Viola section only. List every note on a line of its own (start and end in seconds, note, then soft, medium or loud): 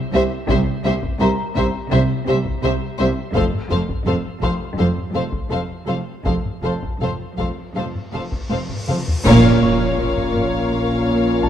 0.13 0.21 G4 medium
0.49 0.57 G4 medium
0.85 0.93 G4 medium
1.22 1.30 G4 medium
1.56 1.64 G4 medium
1.92 2.00 G4 medium
2.27 2.35 G4 medium
2.63 2.71 G4 medium
2.99 3.07 G4 medium
3.35 3.43 A4 medium
3.71 3.79 A4 medium
4.06 4.14 A4 soft
4.42 4.50 A4 soft
4.78 4.86 A4 soft
5.14 5.22 A4 soft
5.50 5.58 A4 soft
5.87 5.95 A4 soft
6.26 6.34 A4 soft
6.64 6.72 A4 soft
7.01 7.09 A4 soft
7.39 7.47 A4 soft
7.76 7.84 A4 soft
8.14 8.22 A4 soft
8.51 8.59 A4 soft
8.89 8.97 A4 soft
9.25 11.49 A#4 medium